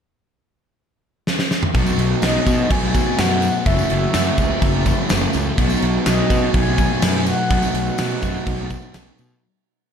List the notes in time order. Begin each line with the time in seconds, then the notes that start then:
1.27 snare
1.39 snare
1.51 snare
1.63 mid tom
1.73 B1 B2 F#3 A3 B3 D#4 F#4, kick, tambourine, crash
1.86 tambourine
1.98 B1 A3, tambourine, crash
2.21 B1 B2 F#3 B3 D#4 D#5, snare, tambourine, crash
2.46 B2 F#4, kick, tambourine, crash
2.69 B1 B2 F#3 B3 D#4 G#5, kick, tambourine, crash
2.93 F#3 B3, kick, tambourine, crash
3.17 F#2 B2 F#3 A3 B3 F#5, snare, tambourine, crash
3.42 F#3, tambourine, crash
3.65 F#1 F#2 C#3 E3 F#3 A3 C#4 F#4 E5, kick, tambourine, crash
3.79 tambourine
3.90 F#1 A3, tambourine, crash
4.14 F#2 C#3 F#3 C#4, snare, tambourine, crash
4.38 C#2 G#4, kick, tambourine, crash
4.61 F#1 F#2 C#3 F#3 C#4, kick, tambourine, crash
4.85 C#3 E3 F#3, kick, tambourine, crash
5.09 F#1 F#2 C#3 F#3 A3, snare, tambourine, crash
5.33 C#2 E3, tambourine, crash
5.56 B1 B2 F#3 A3 B3 D#4 F#4, kick, tambourine, crash
5.70 tambourine
5.82 B1 A3, tambourine, crash
6.05 B1 B2 F#3 B3 D#4 D#5, snare, tambourine, crash
6.30 B2 F#4, kick, tambourine, crash
6.54 B1 B2 F#3 B3 D#4 G#5, kick, tambourine, crash
6.78 F#3 B3, kick, tambourine, crash
7.02 F#2 B2 F#3 A3 B3, snare, tambourine, crash
7.26 F#3 F#5, tambourine, crash
7.49 B1 B2 F#3 A3 B3 D#4 F#4, kick, tambourine, crash
7.63 tambourine
7.74 B1 A3, crash
7.86 tambourine
7.97 B2 F#3 B3 D#4, snare, tambourine, crash
8.22 F#2 F#4, kick, tambourine, crash
8.45 B1 B2 F#3 B3 D#4, kick, tambourine, crash
8.70 F#3 B3, kick, tambourine, crash
8.82 tambourine
8.94 B1 B2 F#3 A3 B3, snare, tambourine, crash
9.18 B2 F#3, tambourine, crash